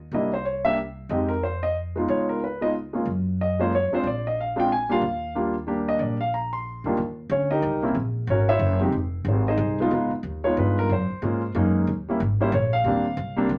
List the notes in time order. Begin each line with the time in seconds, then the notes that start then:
0.12 C2 G3 A#3 D4 E4 D#5
0.34 C5
0.45 C#5
0.65 G3 A#3 D4 G4 E5
1.09 F2 G#3 C4 D#4 G4 D#5
1.29 A#4
1.43 C5
1.63 D#5
1.96 G#3 B3 D#4 F4
2.08 C#2 C#5
2.29 A#4
2.44 B4
2.61 G#3 B3 D#4 F4 D#5
2.93 G#3 A#3 C#4 F4
3.05 F#2
3.41 D#5
3.59 G#3 A#3 C#4 F4 C5
3.75 C#5
3.91 G#3 C4 D4 F4 C5, muted upright bass stroke
4.03 A#1 D5
4.27 D#5
4.40 F5
4.56 G#3 C4 D4 F4 G5
4.72 G#5
4.89 G3 A#3 D4 F4 F5
5.01 D#2
5.35 G3 A#3 D4 F4
5.67 G3 A#3 D4 G4
5.89 D#5
5.99 A#1 D5
6.21 F5
6.34 A#5
6.53 C6
6.84 D#2 E2 G3 A#3 D4 F4
6.97 D#2
7.30 D2 C#4 C#5
7.51 D#4 G4 A#4 D#5
7.62 C2
7.82 A#3 C4 C#4 E4
7.95 A#1
8.27 G#1 C#4 F#4 A#4 C#5
8.49 E4 C5 C#5 E5
8.59 F#1
8.81 G#3 C4 D#4 G4
8.92 F1
9.25 G#1 G#4 C5
9.29 C4 G4
9.48 D#4 G#4 C5 D#5
9.57 C2
9.80 G#3 B3 D#4 F4
9.91 C#2 G#3 B3 D#4 F4
10.11 muted upright bass stroke
10.23 D#2
10.44 G#3 B3 D#4 F4 C#5
10.57 G2 B4
10.79 A#4
10.89 F#2 C5
11.10 muted upright bass stroke
11.22 G#2 G#3 A#3 C#4 F4
11.55 F#2 G#3 A#3 C#4 D#4
11.87 D#2
12.08 G3 A#3 C#4 E4
12.20 G#1
12.40 G3 A#3 C#4 E4 C5
12.52 A#1 C#5
12.73 F5
12.84 D#2 G3 A#3 C4 D4
13.17 C2
13.36 G3 A#3 C4 D4
13.49 D#2